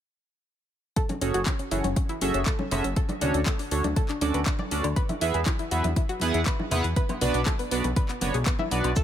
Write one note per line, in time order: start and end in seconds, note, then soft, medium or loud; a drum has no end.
0.96 1.06 A4 medium
0.96 kick loud
0.96 closed hi-hat medium
1.09 1.18 C#4 medium
1.09 closed hi-hat soft
1.09 high conga medium
1.21 1.32 F#1 medium
1.21 1.31 C#4 medium
1.21 1.40 C#4 medium
1.21 1.40 F#4 medium
1.21 1.40 G#4 medium
1.21 1.40 A4 medium
1.21 1.40 C#5 loud
1.21 open hi-hat loud
1.34 1.44 F#1 medium
1.34 1.43 F#4 medium
1.34 closed hi-hat medium
1.46 1.56 C#4 medium
1.46 kick loud
1.46 clap loud
1.46 closed hi-hat medium
1.46 high conga medium
1.59 1.68 C#4 medium
1.59 closed hi-hat soft
1.71 1.82 F#1 medium
1.71 1.83 C#4 medium
1.71 1.81 E4 medium
1.71 1.83 F#4 medium
1.71 1.83 G#4 medium
1.71 1.83 A4 medium
1.71 1.83 C#5 medium
1.71 open hi-hat medium
1.84 1.94 F#1 medium
1.84 1.93 C#4 medium
1.84 closed hi-hat soft
1.84 high conga medium
1.96 2.06 C#4 medium
1.96 kick loud
1.96 closed hi-hat medium
2.09 2.18 E4 medium
2.09 closed hi-hat soft
2.21 2.32 F#1 medium
2.21 2.40 C#4 medium
2.21 2.31 C#4 medium
2.21 2.40 F#4 medium
2.21 2.40 G#4 medium
2.21 2.40 A4 medium
2.21 2.40 E5 loud
2.21 open hi-hat loud
2.21 high conga medium
2.34 2.44 F#1 medium
2.34 2.43 C#4 medium
2.34 closed hi-hat medium
2.46 2.56 A4 loud
2.46 kick loud
2.46 clap loud
2.46 closed hi-hat medium
2.59 2.68 C#4 medium
2.59 high conga medium
2.71 2.82 F#1 medium
2.71 2.83 C#4 medium
2.71 2.81 C#4 medium
2.71 2.83 F#4 medium
2.71 2.83 G#4 medium
2.71 2.83 A4 medium
2.71 2.83 E5 loud
2.71 open hi-hat loud
2.71 low conga medium
2.71 high woodblock medium
2.84 2.94 F#1 medium
2.84 2.93 C#4 medium
2.84 closed hi-hat soft
2.96 3.06 A4 medium
2.96 kick loud
2.96 closed hi-hat medium
3.09 3.18 D4 medium
3.09 closed hi-hat soft
3.09 high conga medium
3.21 3.32 D2 medium
3.21 3.40 C#4 medium
3.21 3.40 D4 medium
3.21 3.31 D4 medium
3.21 3.40 F#4 medium
3.21 3.40 A4 medium
3.21 3.40 C#5 loud
3.21 open hi-hat loud
3.21 low conga medium
3.34 3.44 D2 medium
3.34 3.43 D4 medium
3.34 closed hi-hat soft
3.46 3.56 A4 medium
3.46 kick loud
3.46 clap loud
3.46 closed hi-hat medium
3.46 high conga medium
3.59 3.68 D4 medium
3.59 open hi-hat medium
3.71 3.82 D2 medium
3.71 3.83 C#4 medium
3.71 3.83 D4 medium
3.71 3.81 D4 medium
3.71 3.83 F#4 medium
3.71 3.83 A4 medium
3.71 3.83 C#5 medium
3.71 open hi-hat loud
3.84 3.94 D2 medium
3.84 3.93 D4 medium
3.84 closed hi-hat soft
3.84 high conga medium
3.96 4.06 A4 medium
3.96 kick loud
3.96 closed hi-hat medium
4.09 4.18 D4 medium
4.09 clap soft
4.09 closed hi-hat soft
4.21 4.32 D2 medium
4.21 4.40 C#4 medium
4.21 4.31 D4 medium
4.21 4.40 D4 medium
4.21 4.40 F#4 medium
4.21 4.40 A4 medium
4.21 4.40 D5 loud
4.21 open hi-hat loud
4.21 high conga medium
4.34 4.44 D2 medium
4.34 4.43 B4 medium
4.34 closed hi-hat soft
4.46 4.56 D4 medium
4.46 kick loud
4.46 clap loud
4.46 closed hi-hat medium
4.59 4.68 D5 medium
4.59 high conga medium
4.71 4.82 D2 medium
4.71 4.83 C#4 medium
4.71 4.81 D4 medium
4.71 4.83 D4 medium
4.71 4.83 F#4 medium
4.71 4.83 A4 medium
4.71 4.83 D5 loud
4.71 open hi-hat loud
4.84 4.94 D2 medium
4.84 4.93 D4 medium
4.84 closed hi-hat soft
4.84 high woodblock medium
4.96 5.06 B4 medium
4.96 kick loud
4.96 closed hi-hat medium
5.09 5.18 E4 medium
5.09 closed hi-hat soft
5.09 high conga medium
5.21 5.32 E2 medium
5.21 5.40 B3 medium
5.21 5.31 E4 medium
5.21 5.40 E4 medium
5.21 5.40 G#4 medium
5.21 5.40 B4 medium
5.21 5.40 E5 loud
5.21 open hi-hat loud
5.34 5.44 E2 medium
5.34 5.43 G#4 medium
5.34 closed hi-hat soft
5.46 5.56 E4 medium
5.46 kick loud
5.46 clap loud
5.46 closed hi-hat medium
5.46 high conga medium
5.59 5.68 E4 medium
5.59 closed hi-hat soft
5.71 5.82 E2 medium
5.71 5.83 B3 medium
5.71 5.83 E4 medium
5.71 5.81 F#4 medium
5.71 5.83 G#4 medium
5.71 5.83 B4 medium
5.71 5.83 E5 medium
5.71 open hi-hat loud
5.84 5.94 E2 medium
5.84 5.93 E4 medium
5.84 closed hi-hat soft
5.84 high conga medium
5.96 6.06 E4 medium
5.96 kick loud
5.96 closed hi-hat medium
6.09 6.18 F#4 medium
6.09 closed hi-hat soft
6.20 6.32 E2 medium
6.20 6.40 B3 loud
6.20 6.31 E4 medium
6.20 6.40 E4 medium
6.20 6.40 G#4 medium
6.20 6.40 B4 medium
6.20 6.40 F#5 loud
6.20 open hi-hat loud
6.20 high conga medium
6.34 6.44 E2 medium
6.34 6.43 E4 medium
6.34 closed hi-hat soft
6.46 6.56 B4 medium
6.46 kick loud
6.46 clap loud
6.46 closed hi-hat medium
6.59 6.68 E4 medium
6.59 high conga medium
6.71 6.82 E2 medium
6.71 6.83 B3 loud
6.71 6.83 E4 medium
6.71 6.81 E4 medium
6.71 6.83 G#4 medium
6.71 6.83 B4 medium
6.71 6.83 F#5 loud
6.71 open hi-hat loud
6.71 low conga medium
6.71 high woodblock medium
6.84 6.94 E2 medium
6.84 6.93 E4 medium
6.84 closed hi-hat soft
6.96 7.06 B4 medium
6.96 kick loud
6.96 closed hi-hat medium
7.09 7.18 B3 medium
7.09 closed hi-hat soft
7.09 high conga medium
7.09 high woodblock medium
7.21 7.32 B1 medium
7.21 7.40 B3 medium
7.21 7.31 B3 medium
7.21 7.40 D4 medium
7.21 7.40 F#4 medium
7.21 7.40 B4 medium
7.21 7.40 D5 loud
7.21 open hi-hat loud
7.21 low conga medium
7.34 7.44 B1 medium
7.34 7.43 B3 medium
7.34 closed hi-hat soft
7.46 7.56 A4 medium
7.46 kick loud
7.46 clap loud
7.46 closed hi-hat medium
7.46 high conga medium
7.59 7.68 B3 medium
7.59 open hi-hat medium
7.71 7.82 B1 medium
7.71 7.83 B3 medium
7.71 7.81 B3 medium
7.71 7.83 D4 medium
7.71 7.83 F#4 medium
7.71 7.83 B4 medium
7.71 7.83 D5 medium
7.71 open hi-hat loud
7.84 7.94 B1 medium
7.84 7.93 B3 medium
7.84 closed hi-hat soft
7.84 high conga medium
7.96 8.06 B4 medium
7.96 kick loud
7.96 closed hi-hat medium
8.09 8.18 B3 medium
8.09 clap soft
8.09 closed hi-hat soft
8.21 8.32 F#1 medium
8.21 8.33 B3 medium
8.21 8.31 B3 medium
8.21 8.33 D4 medium
8.21 8.33 F#4 medium
8.21 8.33 B4 medium
8.21 8.33 C#5 medium
8.21 open hi-hat loud
8.21 high conga medium
8.34 8.44 B1 medium
8.34 8.43 G#4 medium
8.34 closed hi-hat soft
8.46 8.56 B3 medium
8.46 kick loud
8.46 clap loud
8.46 closed hi-hat medium
8.59 8.68 E4 medium
8.59 high conga medium
8.71 8.82 B1 medium
8.71 8.90 B3 medium
8.71 8.81 B3 medium
8.71 8.90 D4 medium
8.71 8.90 F#4 medium
8.71 8.90 B4 medium
8.71 8.90 D5 medium
8.71 open hi-hat loud
8.84 8.94 B1 medium
8.84 8.93 B3 medium
8.84 closed hi-hat soft
8.84 high woodblock medium
8.96 9.04 F#3 medium
8.96 9.04 C#4 medium
8.96 9.04 A4 loud
8.96 kick loud
8.96 closed hi-hat medium
8.96 maracas soft